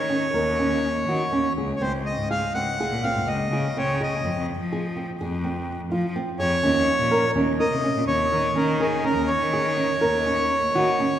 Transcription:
Already playing: cello D#3, accordion C#5
0.10 nylon-string guitar C#4
0.34 cello D#2, nylon-string guitar A#4
0.59 nylon-string guitar C#4
1.08 cello D#3, nylon-string guitar F#4
1.33 cello D#2, nylon-string guitar C#4
1.58 cello C#2, nylon-string guitar G#4
1.76 accordion C#5
1.81 cello C#2, nylon-string guitar C4, accordion C5
2.06 accordion D#5
2.17 cello G#2
2.31 nylon-string guitar G#4, accordion F5
2.54 cello C#2, nylon-string guitar C4, accordion F#5
2.80 nylon-string guitar G#4
2.91 cello A#2
3.03 nylon-string guitar C4, accordion F5
3.15 cello G#2
3.27 cello C#2, accordion D#5
3.50 cello C#3, nylon-string guitar G#4
3.76 cello C#3, nylon-string guitar C4, accordion C#5
4.01 nylon-string guitar G#4, accordion D#5
4.24 cello F2, nylon-string guitar C4
4.36 cello F2
4.59 cello F3
4.73 nylon-string guitar G#4
4.97 nylon-string guitar C4
5.20 cello F2, nylon-string guitar G#4
5.44 nylon-string guitar C4
5.92 cello F3, nylon-string guitar F4
6.16 nylon-string guitar C4
6.39 cello F2, nylon-string guitar G#4, accordion C#5
6.63 cello D#2, nylon-string guitar C#4
6.99 cello A#2
7.11 nylon-string guitar A#4
7.35 cello D#2, nylon-string guitar C#4
7.60 nylon-string guitar A#4, accordion D#5
7.71 cello C3
7.84 nylon-string guitar C#4
7.96 cello A#2
8.07 cello D#2, accordion C#5
8.32 cello D#3, nylon-string guitar A#4
8.56 cello D#3, nylon-string guitar C#4, accordion A#4
8.80 accordion G#4, nylon-string guitar A#4
9.04 nylon-string guitar C#4, accordion A#4
9.16 cello D#2
9.27 accordion C#5
9.41 cello D#3
9.53 nylon-string guitar G#4
9.77 nylon-string guitar C#4
10.01 cello D#2, nylon-string guitar A#4
10.26 nylon-string guitar C#4
10.75 cello D#3, nylon-string guitar F#4
11.00 nylon-string guitar C#4

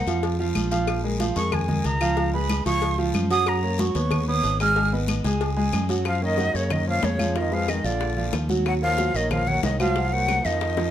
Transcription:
Already playing: flute F#5
0.07 fingered electric bass F2, grand piano F3 F4 F5, cowbell, high conga, short guiro
0.23 cowbell, high conga, long guiro
0.39 grand piano F3 F4 F5, high conga
0.55 fingered electric bass A#1, cowbell, high conga, short guiro, claves
0.71 grand piano F3 F4 F5, cowbell, high conga, short guiro
0.87 cowbell, high conga, long guiro, claves
1.04 grand piano G#3 G#4 A#4, high conga
1.20 grand piano F3 F4 F5, cowbell, high conga, short guiro
1.36 fingered electric bass F2, grand piano G#3 G#4 A#4, flute C#6, cowbell, high conga, short guiro
1.52 flute G#5, cowbell, high conga, low conga, long guiro, claves
1.68 grand piano G#3 G#4 A#4, high conga, low conga
1.84 fingered electric bass C#2, flute A#5, cowbell, short guiro
2.01 grand piano F3 F4 F5, cowbell, short guiro, claves
2.17 grand piano F3 F4 F5, cowbell, high conga, long guiro
2.34 grand piano G#3 G#4 B4, flute B5, high conga
2.49 cowbell, high conga, short guiro, claves
2.66 fingered electric bass C#2, grand piano F3 F4 F5, flute C#6, cowbell, high conga, short guiro
2.82 cowbell, high conga, long guiro
2.98 grand piano F3 F4 F5, high conga
3.14 fingered electric bass F#2, cowbell, high conga, short guiro, claves
3.30 grand piano F#3 F#4 F#5, flute D#6, cowbell, high conga, short guiro
3.46 flute A#5, cowbell, high conga, long guiro, claves
3.63 grand piano A#3 A#4 C#5, high conga
3.78 grand piano F#3 F#4 F#5, flute C#6, cowbell, high conga, short guiro
3.95 fingered electric bass D#2, grand piano B3 B4 C#5, cowbell, high conga, short guiro
4.11 cowbell, high conga, low conga, long guiro, claves
4.28 grand piano B3 B4 C#5, flute D#6, high conga
4.43 fingered electric bass G#1, cowbell, high conga, short guiro
4.60 grand piano G#3 G#4 G#5, flute F6, cowbell, short guiro, claves
4.76 grand piano G#3 G#4 G#5, cowbell, high conga, long guiro
4.92 grand piano B3 B4 D#5, high conga
5.08 cowbell, high conga, short guiro, claves
5.24 fingered electric bass C#2, grand piano G#3 G#4 G#5, cowbell, short guiro
5.41 cowbell, high conga, long guiro
5.57 grand piano G#3 G#4 G#5, high conga
5.73 fingered electric bass F#2, cowbell, high conga, short guiro, claves
5.89 grand piano F#3 F#4 F#5, cowbell, high conga, short guiro
6.05 trombone F3, flute F5, high bongo, high conga, long guiro, claves
6.22 trombone D#3, grand piano A#3 A#4 C#5, flute D#5, high conga
6.38 grand piano F#3 F#4 F#5, high bongo, high conga, short guiro
6.54 fingered electric bass F#2, trombone C#3, grand piano A#3 A#4 C#5, flute C#5, short guiro
6.70 trombone D#3, flute D#5, high bongo, high conga, low conga, long guiro, claves
6.87 trombone F3, grand piano A#3 A#4 C#5, flute F5, high conga
7.03 fingered electric bass F2, trombone C#3, flute C#5, high bongo, low bongo, high conga, short guiro
7.19 grand piano F3 F4 F5, high conga, short guiro, claves
7.35 trombone D#3, grand piano F3 F4 F5, flute D#5, high bongo, high conga, long guiro
7.52 trombone F3, grand piano G#3 G#4 B4, flute F5, high bongo, high conga
7.68 trombone D#3, flute D#5, high bongo, high conga, short guiro, claves
7.84 fingered electric bass A#1, trombone D3, grand piano F3 F4 F5, flute D5, high bongo, high conga, short guiro
8.01 high bongo, high conga, long guiro
8.17 grand piano F3 F4 F5, high conga
8.33 fingered electric bass D#2, high bongo, low bongo, high conga, short guiro, claves
8.49 grand piano F#3 F#4 F#5, high bongo, high conga, short guiro
8.65 trombone F#3, flute F#5, high bongo, high conga, long guiro, claves
8.81 trombone F3, grand piano A#3 A#4 C#5, flute F5, high conga
8.98 grand piano F#3 F#4 F#5, high bongo, high conga, short guiro
9.14 fingered electric bass A#1, trombone D#3, grand piano A#3 A#4 C#5, flute D#5, short guiro
9.31 trombone F3, flute F5, high bongo, high conga, low conga, long guiro, claves
9.47 trombone F#3, grand piano A#3 A#4 C#5, flute F#5, high conga, low conga
9.63 fingered electric bass C2, trombone D#3, flute D#5, high bongo, low bongo, high conga, short guiro
9.80 trombone F3, grand piano F#3 F#4 F#5, flute F5, high conga, short guiro, claves
9.96 grand piano F#3 F#4 F#5, high bongo, high conga, long guiro
10.12 trombone F#3, grand piano A#3 A#4 C5, flute F#5, high bongo, high conga
10.28 high bongo, high conga, short guiro, claves
10.45 fingered electric bass F2, trombone D#3, grand piano F3 F4 F5, flute D#5, high bongo, high conga, short guiro
10.61 high bongo, high conga, long guiro
10.77 grand piano F3 F4 F5, high bongo, high conga

